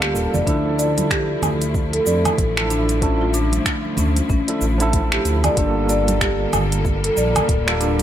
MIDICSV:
0, 0, Header, 1, 6, 480
1, 0, Start_track
1, 0, Key_signature, -1, "minor"
1, 0, Tempo, 638298
1, 351, Time_signature, 4, 2, 24, 8
1, 6035, End_track
2, 0, Start_track
2, 0, Title_t, "Marimba"
2, 0, Program_c, 0, 12
2, 12, Note_on_c, 0, 67, 77
2, 69, Note_off_c, 0, 67, 0
2, 255, Note_on_c, 0, 74, 70
2, 347, Note_off_c, 0, 74, 0
2, 352, Note_on_c, 0, 62, 67
2, 432, Note_off_c, 0, 62, 0
2, 591, Note_on_c, 0, 74, 72
2, 821, Note_off_c, 0, 74, 0
2, 831, Note_on_c, 0, 67, 82
2, 1301, Note_off_c, 0, 67, 0
2, 1455, Note_on_c, 0, 69, 73
2, 1542, Note_off_c, 0, 69, 0
2, 1553, Note_on_c, 0, 74, 70
2, 2022, Note_off_c, 0, 74, 0
2, 2032, Note_on_c, 0, 62, 70
2, 2167, Note_off_c, 0, 62, 0
2, 2272, Note_on_c, 0, 61, 76
2, 2400, Note_off_c, 0, 61, 0
2, 2415, Note_on_c, 0, 65, 68
2, 2502, Note_off_c, 0, 65, 0
2, 2512, Note_on_c, 0, 62, 74
2, 2982, Note_off_c, 0, 62, 0
2, 2990, Note_on_c, 0, 61, 69
2, 3126, Note_off_c, 0, 61, 0
2, 3232, Note_on_c, 0, 61, 77
2, 3702, Note_off_c, 0, 61, 0
2, 3853, Note_on_c, 0, 67, 80
2, 3909, Note_off_c, 0, 67, 0
2, 4094, Note_on_c, 0, 74, 76
2, 4187, Note_off_c, 0, 74, 0
2, 4191, Note_on_c, 0, 62, 71
2, 4272, Note_off_c, 0, 62, 0
2, 4432, Note_on_c, 0, 74, 76
2, 4662, Note_off_c, 0, 74, 0
2, 4672, Note_on_c, 0, 67, 83
2, 5142, Note_off_c, 0, 67, 0
2, 5296, Note_on_c, 0, 69, 74
2, 5383, Note_off_c, 0, 69, 0
2, 5392, Note_on_c, 0, 74, 74
2, 5862, Note_off_c, 0, 74, 0
2, 5871, Note_on_c, 0, 62, 70
2, 6006, Note_off_c, 0, 62, 0
2, 6035, End_track
3, 0, Start_track
3, 0, Title_t, "Tine electric piano"
3, 0, Program_c, 1, 4
3, 0, Note_on_c, 1, 55, 89
3, 0, Note_on_c, 1, 58, 85
3, 0, Note_on_c, 1, 65, 79
3, 0, Note_on_c, 1, 69, 99
3, 321, Note_off_c, 1, 55, 0
3, 326, Note_off_c, 1, 58, 0
3, 330, Note_off_c, 1, 65, 0
3, 335, Note_off_c, 1, 69, 0
3, 337, Note_on_c, 1, 53, 83
3, 348, Note_on_c, 1, 62, 83
3, 357, Note_on_c, 1, 64, 81
3, 368, Note_on_c, 1, 69, 94
3, 1892, Note_off_c, 1, 53, 0
3, 1898, Note_off_c, 1, 62, 0
3, 1902, Note_off_c, 1, 64, 0
3, 1908, Note_off_c, 1, 69, 0
3, 1926, Note_on_c, 1, 53, 77
3, 1932, Note_on_c, 1, 62, 69
3, 1936, Note_on_c, 1, 64, 71
3, 1942, Note_on_c, 1, 69, 81
3, 2244, Note_off_c, 1, 53, 0
3, 2247, Note_off_c, 1, 62, 0
3, 2249, Note_off_c, 1, 64, 0
3, 2252, Note_off_c, 1, 69, 0
3, 2264, Note_on_c, 1, 53, 73
3, 2269, Note_on_c, 1, 62, 66
3, 2274, Note_on_c, 1, 64, 69
3, 2279, Note_on_c, 1, 69, 78
3, 2492, Note_off_c, 1, 53, 0
3, 2494, Note_off_c, 1, 62, 0
3, 2497, Note_off_c, 1, 64, 0
3, 2499, Note_off_c, 1, 69, 0
3, 3364, Note_on_c, 1, 53, 75
3, 3370, Note_on_c, 1, 62, 70
3, 3373, Note_on_c, 1, 64, 71
3, 3380, Note_on_c, 1, 69, 81
3, 3487, Note_off_c, 1, 53, 0
3, 3490, Note_off_c, 1, 62, 0
3, 3492, Note_off_c, 1, 64, 0
3, 3496, Note_off_c, 1, 69, 0
3, 3596, Note_on_c, 1, 53, 94
3, 3607, Note_on_c, 1, 50, 88
3, 3616, Note_on_c, 1, 64, 90
3, 3626, Note_on_c, 1, 69, 107
3, 4159, Note_off_c, 1, 53, 0
3, 4164, Note_off_c, 1, 50, 0
3, 4169, Note_off_c, 1, 64, 0
3, 4173, Note_on_c, 1, 55, 86
3, 4174, Note_off_c, 1, 69, 0
3, 4184, Note_on_c, 1, 58, 82
3, 4191, Note_on_c, 1, 65, 85
3, 4202, Note_on_c, 1, 69, 99
3, 5730, Note_off_c, 1, 55, 0
3, 5735, Note_off_c, 1, 58, 0
3, 5739, Note_off_c, 1, 65, 0
3, 5744, Note_off_c, 1, 69, 0
3, 5765, Note_on_c, 1, 55, 77
3, 5771, Note_on_c, 1, 58, 70
3, 5776, Note_on_c, 1, 65, 74
3, 5781, Note_on_c, 1, 69, 91
3, 6035, Note_off_c, 1, 55, 0
3, 6035, Note_off_c, 1, 58, 0
3, 6035, Note_off_c, 1, 65, 0
3, 6035, Note_off_c, 1, 69, 0
3, 6035, End_track
4, 0, Start_track
4, 0, Title_t, "String section"
4, 0, Program_c, 2, 48
4, 0, Note_on_c, 2, 50, 72
4, 0, Note_on_c, 2, 55, 77
4, 0, Note_on_c, 2, 58, 85
4, 0, Note_on_c, 2, 69, 74
4, 322, Note_off_c, 2, 50, 0
4, 322, Note_off_c, 2, 69, 0
4, 323, Note_off_c, 2, 55, 0
4, 323, Note_off_c, 2, 58, 0
4, 353, Note_on_c, 2, 53, 86
4, 354, Note_on_c, 2, 57, 70
4, 354, Note_on_c, 2, 64, 68
4, 355, Note_on_c, 2, 50, 75
4, 4162, Note_off_c, 2, 53, 0
4, 4163, Note_off_c, 2, 50, 0
4, 4163, Note_off_c, 2, 57, 0
4, 4163, Note_off_c, 2, 64, 0
4, 4190, Note_on_c, 2, 50, 69
4, 4190, Note_on_c, 2, 55, 75
4, 4190, Note_on_c, 2, 58, 85
4, 4191, Note_on_c, 2, 69, 72
4, 6035, Note_off_c, 2, 50, 0
4, 6035, Note_off_c, 2, 55, 0
4, 6035, Note_off_c, 2, 58, 0
4, 6035, Note_off_c, 2, 69, 0
4, 6035, End_track
5, 0, Start_track
5, 0, Title_t, "Analog synth bass"
5, 0, Program_c, 3, 38
5, 0, Note_on_c, 3, 38, 100
5, 110, Note_on_c, 3, 26, 96
5, 121, Note_off_c, 3, 38, 0
5, 208, Note_off_c, 3, 26, 0
5, 254, Note_on_c, 3, 29, 85
5, 321, Note_off_c, 3, 29, 0
5, 352, Note_on_c, 3, 38, 97
5, 1022, Note_off_c, 3, 38, 0
5, 1074, Note_on_c, 3, 38, 81
5, 1503, Note_off_c, 3, 38, 0
5, 1555, Note_on_c, 3, 41, 83
5, 1731, Note_off_c, 3, 41, 0
5, 1791, Note_on_c, 3, 33, 91
5, 2701, Note_off_c, 3, 33, 0
5, 2992, Note_on_c, 3, 38, 86
5, 3169, Note_off_c, 3, 38, 0
5, 3231, Note_on_c, 3, 33, 94
5, 3328, Note_off_c, 3, 33, 0
5, 3470, Note_on_c, 3, 33, 96
5, 3901, Note_off_c, 3, 33, 0
5, 3949, Note_on_c, 3, 38, 94
5, 4128, Note_off_c, 3, 38, 0
5, 4190, Note_on_c, 3, 31, 97
5, 4861, Note_off_c, 3, 31, 0
5, 4910, Note_on_c, 3, 31, 87
5, 5341, Note_off_c, 3, 31, 0
5, 5393, Note_on_c, 3, 34, 83
5, 5570, Note_off_c, 3, 34, 0
5, 5630, Note_on_c, 3, 26, 88
5, 6035, Note_off_c, 3, 26, 0
5, 6035, End_track
6, 0, Start_track
6, 0, Title_t, "Drums"
6, 15, Note_on_c, 9, 26, 72
6, 90, Note_off_c, 9, 26, 0
6, 116, Note_on_c, 9, 69, 71
6, 191, Note_off_c, 9, 69, 0
6, 258, Note_on_c, 9, 69, 45
6, 261, Note_on_c, 9, 64, 77
6, 334, Note_off_c, 9, 69, 0
6, 336, Note_off_c, 9, 64, 0
6, 352, Note_on_c, 9, 36, 96
6, 356, Note_on_c, 9, 42, 50
6, 357, Note_on_c, 9, 69, 31
6, 427, Note_off_c, 9, 36, 0
6, 431, Note_off_c, 9, 42, 0
6, 432, Note_off_c, 9, 69, 0
6, 595, Note_on_c, 9, 42, 29
6, 596, Note_on_c, 9, 69, 73
6, 670, Note_off_c, 9, 42, 0
6, 671, Note_off_c, 9, 69, 0
6, 735, Note_on_c, 9, 42, 41
6, 736, Note_on_c, 9, 69, 45
6, 738, Note_on_c, 9, 63, 58
6, 810, Note_off_c, 9, 42, 0
6, 811, Note_off_c, 9, 69, 0
6, 813, Note_off_c, 9, 63, 0
6, 833, Note_on_c, 9, 36, 103
6, 834, Note_on_c, 9, 26, 69
6, 834, Note_on_c, 9, 42, 50
6, 834, Note_on_c, 9, 69, 30
6, 908, Note_off_c, 9, 36, 0
6, 909, Note_off_c, 9, 26, 0
6, 909, Note_off_c, 9, 42, 0
6, 910, Note_off_c, 9, 69, 0
6, 1072, Note_on_c, 9, 64, 83
6, 1074, Note_on_c, 9, 42, 30
6, 1074, Note_on_c, 9, 77, 58
6, 1075, Note_on_c, 9, 69, 77
6, 1147, Note_off_c, 9, 64, 0
6, 1149, Note_off_c, 9, 42, 0
6, 1149, Note_off_c, 9, 77, 0
6, 1150, Note_off_c, 9, 69, 0
6, 1215, Note_on_c, 9, 42, 39
6, 1216, Note_on_c, 9, 69, 42
6, 1290, Note_off_c, 9, 42, 0
6, 1291, Note_off_c, 9, 69, 0
6, 1312, Note_on_c, 9, 36, 100
6, 1313, Note_on_c, 9, 69, 32
6, 1387, Note_off_c, 9, 36, 0
6, 1388, Note_off_c, 9, 69, 0
6, 1454, Note_on_c, 9, 42, 48
6, 1529, Note_off_c, 9, 42, 0
6, 1552, Note_on_c, 9, 69, 80
6, 1627, Note_off_c, 9, 69, 0
6, 1692, Note_on_c, 9, 62, 30
6, 1695, Note_on_c, 9, 42, 37
6, 1695, Note_on_c, 9, 77, 73
6, 1696, Note_on_c, 9, 69, 41
6, 1699, Note_on_c, 9, 64, 76
6, 1767, Note_off_c, 9, 62, 0
6, 1770, Note_off_c, 9, 42, 0
6, 1770, Note_off_c, 9, 77, 0
6, 1771, Note_off_c, 9, 69, 0
6, 1774, Note_off_c, 9, 64, 0
6, 1791, Note_on_c, 9, 36, 108
6, 1793, Note_on_c, 9, 42, 52
6, 1794, Note_on_c, 9, 69, 33
6, 1866, Note_off_c, 9, 36, 0
6, 1868, Note_off_c, 9, 42, 0
6, 1869, Note_off_c, 9, 69, 0
6, 1935, Note_on_c, 9, 26, 74
6, 2010, Note_off_c, 9, 26, 0
6, 2034, Note_on_c, 9, 42, 43
6, 2034, Note_on_c, 9, 69, 69
6, 2109, Note_off_c, 9, 42, 0
6, 2110, Note_off_c, 9, 69, 0
6, 2173, Note_on_c, 9, 62, 30
6, 2174, Note_on_c, 9, 42, 41
6, 2175, Note_on_c, 9, 69, 40
6, 2248, Note_off_c, 9, 62, 0
6, 2249, Note_off_c, 9, 42, 0
6, 2250, Note_off_c, 9, 69, 0
6, 2271, Note_on_c, 9, 36, 96
6, 2272, Note_on_c, 9, 42, 51
6, 2273, Note_on_c, 9, 69, 29
6, 2346, Note_off_c, 9, 36, 0
6, 2347, Note_off_c, 9, 42, 0
6, 2348, Note_off_c, 9, 69, 0
6, 2419, Note_on_c, 9, 63, 33
6, 2494, Note_off_c, 9, 63, 0
6, 2511, Note_on_c, 9, 42, 29
6, 2512, Note_on_c, 9, 69, 70
6, 2587, Note_off_c, 9, 42, 0
6, 2587, Note_off_c, 9, 69, 0
6, 2647, Note_on_c, 9, 63, 50
6, 2653, Note_on_c, 9, 42, 43
6, 2654, Note_on_c, 9, 69, 43
6, 2723, Note_off_c, 9, 63, 0
6, 2728, Note_off_c, 9, 42, 0
6, 2729, Note_off_c, 9, 69, 0
6, 2751, Note_on_c, 9, 26, 68
6, 2751, Note_on_c, 9, 36, 93
6, 2751, Note_on_c, 9, 42, 52
6, 2752, Note_on_c, 9, 69, 30
6, 2826, Note_off_c, 9, 26, 0
6, 2826, Note_off_c, 9, 36, 0
6, 2826, Note_off_c, 9, 42, 0
6, 2827, Note_off_c, 9, 69, 0
6, 2896, Note_on_c, 9, 63, 32
6, 2972, Note_off_c, 9, 63, 0
6, 2985, Note_on_c, 9, 64, 78
6, 2990, Note_on_c, 9, 42, 29
6, 2991, Note_on_c, 9, 69, 78
6, 3060, Note_off_c, 9, 64, 0
6, 3065, Note_off_c, 9, 42, 0
6, 3066, Note_off_c, 9, 69, 0
6, 3132, Note_on_c, 9, 42, 44
6, 3133, Note_on_c, 9, 69, 42
6, 3139, Note_on_c, 9, 63, 34
6, 3207, Note_off_c, 9, 42, 0
6, 3208, Note_off_c, 9, 69, 0
6, 3214, Note_off_c, 9, 63, 0
6, 3230, Note_on_c, 9, 69, 31
6, 3231, Note_on_c, 9, 36, 102
6, 3306, Note_off_c, 9, 36, 0
6, 3306, Note_off_c, 9, 69, 0
6, 3370, Note_on_c, 9, 42, 54
6, 3445, Note_off_c, 9, 42, 0
6, 3469, Note_on_c, 9, 69, 70
6, 3544, Note_off_c, 9, 69, 0
6, 3611, Note_on_c, 9, 42, 40
6, 3612, Note_on_c, 9, 69, 36
6, 3686, Note_off_c, 9, 42, 0
6, 3687, Note_off_c, 9, 69, 0
6, 3709, Note_on_c, 9, 42, 52
6, 3710, Note_on_c, 9, 69, 32
6, 3711, Note_on_c, 9, 36, 106
6, 3785, Note_off_c, 9, 42, 0
6, 3785, Note_off_c, 9, 69, 0
6, 3786, Note_off_c, 9, 36, 0
6, 3850, Note_on_c, 9, 26, 72
6, 3925, Note_off_c, 9, 26, 0
6, 3950, Note_on_c, 9, 42, 46
6, 3951, Note_on_c, 9, 69, 66
6, 4025, Note_off_c, 9, 42, 0
6, 4026, Note_off_c, 9, 69, 0
6, 4090, Note_on_c, 9, 42, 43
6, 4090, Note_on_c, 9, 77, 59
6, 4091, Note_on_c, 9, 69, 42
6, 4093, Note_on_c, 9, 64, 70
6, 4165, Note_off_c, 9, 42, 0
6, 4165, Note_off_c, 9, 77, 0
6, 4166, Note_off_c, 9, 69, 0
6, 4169, Note_off_c, 9, 64, 0
6, 4189, Note_on_c, 9, 42, 52
6, 4190, Note_on_c, 9, 69, 31
6, 4191, Note_on_c, 9, 36, 92
6, 4264, Note_off_c, 9, 42, 0
6, 4265, Note_off_c, 9, 69, 0
6, 4266, Note_off_c, 9, 36, 0
6, 4431, Note_on_c, 9, 42, 30
6, 4432, Note_on_c, 9, 69, 71
6, 4506, Note_off_c, 9, 42, 0
6, 4507, Note_off_c, 9, 69, 0
6, 4573, Note_on_c, 9, 42, 47
6, 4574, Note_on_c, 9, 63, 64
6, 4574, Note_on_c, 9, 69, 40
6, 4648, Note_off_c, 9, 42, 0
6, 4649, Note_off_c, 9, 69, 0
6, 4650, Note_off_c, 9, 63, 0
6, 4671, Note_on_c, 9, 26, 72
6, 4671, Note_on_c, 9, 36, 96
6, 4671, Note_on_c, 9, 42, 55
6, 4672, Note_on_c, 9, 69, 30
6, 4746, Note_off_c, 9, 36, 0
6, 4747, Note_off_c, 9, 26, 0
6, 4747, Note_off_c, 9, 42, 0
6, 4747, Note_off_c, 9, 69, 0
6, 4911, Note_on_c, 9, 42, 31
6, 4911, Note_on_c, 9, 77, 66
6, 4912, Note_on_c, 9, 64, 82
6, 4912, Note_on_c, 9, 69, 76
6, 4986, Note_off_c, 9, 42, 0
6, 4986, Note_off_c, 9, 77, 0
6, 4987, Note_off_c, 9, 69, 0
6, 4988, Note_off_c, 9, 64, 0
6, 5055, Note_on_c, 9, 42, 44
6, 5056, Note_on_c, 9, 69, 43
6, 5130, Note_off_c, 9, 42, 0
6, 5131, Note_off_c, 9, 69, 0
6, 5150, Note_on_c, 9, 36, 106
6, 5153, Note_on_c, 9, 69, 32
6, 5226, Note_off_c, 9, 36, 0
6, 5228, Note_off_c, 9, 69, 0
6, 5295, Note_on_c, 9, 42, 54
6, 5370, Note_off_c, 9, 42, 0
6, 5393, Note_on_c, 9, 69, 76
6, 5468, Note_off_c, 9, 69, 0
6, 5530, Note_on_c, 9, 62, 34
6, 5534, Note_on_c, 9, 42, 42
6, 5534, Note_on_c, 9, 77, 77
6, 5535, Note_on_c, 9, 69, 39
6, 5538, Note_on_c, 9, 64, 68
6, 5605, Note_off_c, 9, 62, 0
6, 5609, Note_off_c, 9, 42, 0
6, 5609, Note_off_c, 9, 77, 0
6, 5610, Note_off_c, 9, 69, 0
6, 5613, Note_off_c, 9, 64, 0
6, 5630, Note_on_c, 9, 36, 96
6, 5632, Note_on_c, 9, 42, 55
6, 5633, Note_on_c, 9, 69, 32
6, 5706, Note_off_c, 9, 36, 0
6, 5707, Note_off_c, 9, 42, 0
6, 5708, Note_off_c, 9, 69, 0
6, 5773, Note_on_c, 9, 26, 74
6, 5848, Note_off_c, 9, 26, 0
6, 5871, Note_on_c, 9, 42, 52
6, 5872, Note_on_c, 9, 69, 64
6, 5946, Note_off_c, 9, 42, 0
6, 5947, Note_off_c, 9, 69, 0
6, 6012, Note_on_c, 9, 42, 41
6, 6012, Note_on_c, 9, 62, 35
6, 6035, Note_off_c, 9, 42, 0
6, 6035, Note_off_c, 9, 62, 0
6, 6035, End_track
0, 0, End_of_file